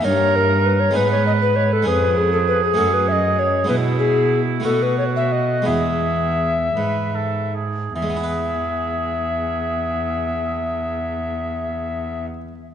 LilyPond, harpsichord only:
\new Staff \with { instrumentName = "Harpsichord" } { \time 6/8 \key e \major \tempo 4. = 57 << { <ais dis' ais'>4. <gis b dis' gis'>4. | <gis cis' gis'>4. <a cis' fis'>4. | <gis b e'>4. <a b fis'>4. | <gis b e'>2. |
<e gis b e' b'>2.~ | <e gis b e' b'>2. | } \\ { g,4. gis,4. | eis,4. fis,4. | b,4. b,4. | e,4. gis,4. |
r2. | r2. | } >> }